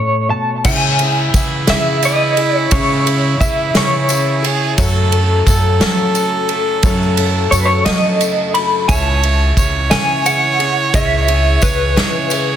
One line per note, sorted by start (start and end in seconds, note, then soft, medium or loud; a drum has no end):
0.00 0.30 A2 soft
0.00 0.65 C#4 soft
0.00 0.61 A4 soft
0.00 0.30 C#5 medium
0.29 0.64 B2 soft
0.29 0.65 A5 medium
0.64 2.67 C#2 medium
0.64 1.30 C#3 loud
0.64 2.68 C#3 medium
0.64 1.00 C#3 medium
0.64 1.00 E3 medium
0.64 1.36 G#3 medium
0.64 1.36 C#4 medium
0.64 1.00 C#4 medium
0.64 4.46 E4 loud
0.64 1.36 E4 medium
0.64 1.00 E4 medium
0.64 0.99 G#4 medium
0.64 1.36 C#5 medium
0.64 1.36 E5 loud
0.64 1.39 G#5 loud
0.64 kick loud
0.64 crash loud
0.64 tambourine loud
0.99 1.34 C#4 soft
0.99 1.34 E4 medium
0.99 1.34 G#4 medium
0.99 ride medium
1.34 1.66 C#3 medium
1.34 1.68 E3 medium
1.34 1.69 C#4 medium
1.34 1.68 E4 medium
1.34 1.68 G#4 medium
1.34 kick medium
1.34 ride medium
1.34 tambourine loud
1.39 1.69 F#5 loud
1.67 2.67 C#3 loud
1.67 2.04 C#3 medium
1.67 2.02 E3 medium
1.67 2.40 G#3 medium
1.67 2.40 C#4 medium
1.67 2.03 C#4 medium
1.67 2.03 E4 medium
1.67 2.40 E4 medium
1.67 2.03 G#4 medium
1.67 2.40 C#5 medium
1.67 2.04 E5 medium
1.67 snare loud
1.67 ride medium
2.02 2.37 E3 medium
2.02 2.38 C#4 medium
2.02 2.38 E4 medium
2.02 2.36 G#4 medium
2.02 2.57 D#5 loud
2.02 ride medium
2.02 tambourine loud
2.37 2.71 C#4 medium
2.37 2.72 E4 medium
2.37 2.72 G#4 medium
2.37 ride medium
2.57 2.72 C#5 loud
2.71 4.75 C#2 medium
2.71 3.05 C#3 medium
2.71 3.36 C#3 loud
2.71 4.75 C#3 medium
2.71 3.06 E3 medium
2.71 3.43 G#3 medium
2.71 3.06 C#4 loud
2.71 3.43 C#4 medium
2.71 3.06 E4 medium
2.71 3.43 E4 medium
2.71 3.05 G#4 medium
2.71 3.40 C#5 loud
2.71 3.44 C#5 medium
2.71 3.43 E5 medium
2.71 kick loud
2.71 ride loud
2.71 tambourine loud
3.06 3.40 C#4 soft
3.06 3.40 E4 soft
3.06 3.40 G#4 medium
3.06 ride medium
3.40 3.72 C#3 medium
3.40 3.74 E3 medium
3.40 3.75 C#4 medium
3.40 3.74 E4 medium
3.40 3.73 G#4 medium
3.40 3.76 E5 medium
3.40 kick medium
3.40 ride medium
3.40 tambourine loud
3.74 4.73 C#3 loud
3.74 4.10 C#3 medium
3.74 4.07 E3 medium
3.74 4.46 G#3 medium
3.74 4.09 C#4 medium
3.74 4.47 C#4 medium
3.74 4.09 E4 medium
3.74 4.47 E4 medium
3.74 4.09 G#4 medium
3.74 4.47 C#5 medium
3.74 4.49 C#5 medium
3.74 4.47 E5 medium
3.74 snare loud
3.74 ride medium
4.09 4.43 E3 medium
4.09 4.44 C#4 medium
4.09 4.43 E4 medium
4.09 4.41 G#4 medium
4.09 ride medium
4.09 tambourine loud
4.42 4.78 C#4 medium
4.42 4.78 E4 medium
4.42 4.77 G#4 medium
4.42 4.77 G#4 loud
4.42 ride medium
4.77 6.80 F#1 medium
4.77 5.12 F#2 medium
4.77 5.43 F#2 loud
4.77 6.80 F#2 medium
4.77 5.12 C#3 medium
4.77 5.49 F#3 loud
4.77 5.12 F#3 loud
4.77 5.49 A3 loud
4.77 5.12 A3 loud
4.77 5.49 C#4 medium
4.77 5.11 C#4 loud
4.77 5.42 A4 loud
4.77 5.49 A4 loud
4.77 5.10 A4 loud
4.77 5.49 C#5 loud
4.77 kick loud
4.77 ride loud
4.77 tambourine loud
5.11 5.45 F#3 soft
5.11 5.46 A3 medium
5.11 5.47 C#4 medium
5.11 5.46 A4 medium
5.11 ride medium
5.46 5.78 F#2 loud
5.46 5.80 F#3 medium
5.46 5.81 A3 medium
5.46 5.80 C#4 medium
5.46 8.51 A4 loud
5.46 5.80 A4 medium
5.46 kick medium
5.46 ride medium
5.46 tambourine loud
5.80 6.16 F#2 medium
5.80 6.16 C#3 medium
5.80 6.79 F#3 loud
5.80 6.14 F#3 medium
5.80 6.52 F#3 medium
5.80 6.14 A3 medium
5.80 6.52 A3 medium
5.80 6.15 C#4 medium
5.80 6.52 C#4 medium
5.80 6.15 A4 medium
5.80 6.52 A4 medium
5.80 6.52 C#5 loud
5.80 snare loud
5.80 ride medium
6.15 6.49 F#3 medium
6.15 6.49 A3 medium
6.15 6.50 C#4 medium
6.15 6.49 A4 medium
6.15 ride medium
6.15 tambourine medium
6.49 6.84 A3 medium
6.49 6.84 C#4 medium
6.49 6.84 A4 medium
6.49 ride medium
6.53 6.84 F#3 medium
6.83 8.86 F#1 medium
6.83 7.48 F#2 loud
6.83 7.18 F#2 medium
6.83 8.86 F#2 medium
6.83 7.18 C#3 medium
6.83 7.18 F#3 medium
6.83 7.55 F#3 loud
6.83 7.55 A3 medium
6.83 7.19 A3 loud
6.83 7.55 C#4 medium
6.83 7.18 C#4 medium
6.83 7.55 A4 medium
6.83 7.17 A4 medium
6.83 7.55 C#5 loud
6.83 kick loud
6.83 ride medium
6.83 tambourine medium
7.03 tambourine soft
7.17 7.51 F#3 soft
7.17 7.52 A3 medium
7.17 7.53 C#4 medium
7.17 7.52 A4 medium
7.17 ride medium
7.51 7.84 F#2 loud
7.51 7.87 F#3 medium
7.51 7.86 A3 medium
7.51 7.85 C#4 medium
7.51 7.85 A4 medium
7.51 7.58 C#5 loud
7.51 ride medium
7.51 tambourine loud
7.59 7.66 B4 medium
7.65 7.85 C#5 loud
7.85 8.22 F#2 medium
7.85 8.21 C#3 medium
7.85 8.85 F#3 loud
7.85 8.58 F#3 medium
7.85 8.18 F#3 medium
7.85 8.19 A3 medium
7.85 8.20 C#4 medium
7.85 8.58 C#4 medium
7.85 8.21 A4 medium
7.85 8.54 D#5 loud
7.85 snare loud
7.85 ride medium
8.20 8.54 F#3 medium
8.20 8.55 A3 medium
8.20 8.55 C#4 medium
8.20 8.53 A4 medium
8.20 ride medium
8.20 tambourine loud
8.54 8.89 F#3 soft
8.54 8.89 A3 soft
8.54 8.88 C#4 medium
8.54 8.89 A4 medium
8.54 8.88 B5 loud
8.54 ride medium
8.88 9.53 C#2 loud
8.88 10.91 C#2 medium
8.88 9.23 C#3 medium
8.88 10.91 C#3 medium
8.88 9.23 E3 medium
8.88 9.60 G#3 medium
8.88 9.60 C#4 medium
8.88 9.24 C#4 medium
8.88 9.60 E4 medium
8.88 9.23 E4 medium
8.88 9.54 C#5 loud
8.88 9.60 C#5 medium
8.88 9.60 E5 loud
8.88 9.90 A5 loud
8.88 kick loud
8.88 ride medium
8.88 tambourine loud
9.23 9.57 C#4 soft
9.23 9.57 E4 medium
9.23 ride medium
9.57 9.89 C#2 medium
9.57 9.91 E3 medium
9.57 9.91 C#4 medium
9.57 9.91 E4 medium
9.57 12.56 C#5 loud
9.57 kick medium
9.57 ride medium
9.57 tambourine loud
9.91 10.90 C#3 loud
9.91 10.27 C#3 medium
9.91 10.23 E3 medium
9.91 10.63 G#3 medium
9.91 10.63 C#4 medium
9.91 10.24 C#4 medium
9.91 10.63 E4 medium
9.91 10.25 E4 medium
9.91 10.26 G#4 medium
9.91 10.63 C#5 medium
9.91 10.62 E5 medium
9.91 10.26 G#5 loud
9.91 snare loud
9.91 ride medium
10.24 10.60 E3 medium
10.24 10.60 C#4 medium
10.24 10.59 E4 medium
10.24 10.58 G#4 medium
10.24 10.91 F#5 loud
10.24 ride medium
10.24 tambourine loud
10.59 10.93 C#4 medium
10.59 10.93 E4 medium
10.59 10.94 G#4 medium
10.59 ride medium
10.93 11.59 C#2 loud
10.93 12.56 C#2 medium
10.93 11.28 C#3 medium
10.93 12.56 C#3 medium
10.93 11.28 E3 medium
10.93 11.65 G#3 medium
10.93 11.65 C#4 medium
10.93 11.29 C#4 medium
10.93 11.65 E4 medium
10.93 11.28 E4 medium
10.93 11.26 G#4 medium
10.93 11.65 C#5 medium
10.93 11.65 E5 loud
10.93 11.66 E5 loud
10.93 kick loud
10.93 ride medium
10.93 tambourine loud
11.27 11.61 C#4 soft
11.27 11.62 E4 soft
11.27 11.62 G#4 medium
11.27 ride medium
11.61 11.95 C#2 loud
11.61 11.96 E3 medium
11.61 11.96 C#4 medium
11.61 11.96 E4 medium
11.61 11.95 G#4 medium
11.61 12.56 B4 loud
11.61 kick medium
11.61 ride medium
11.61 tambourine loud
11.96 12.56 C#3 loud
11.96 12.32 C#3 medium
11.96 12.29 E3 medium
11.96 12.56 G#3 medium
11.96 12.56 C#4 medium
11.96 12.30 C#4 medium
11.96 12.31 E4 medium
11.96 12.56 E4 medium
11.96 12.31 G#4 medium
11.96 12.56 C#5 medium
11.96 12.56 D#5 medium
11.96 snare loud
11.96 ride medium
12.30 12.56 E3 medium
12.30 12.56 C#4 medium
12.30 12.56 E4 medium
12.30 12.56 G#4 medium
12.30 ride medium
12.30 tambourine loud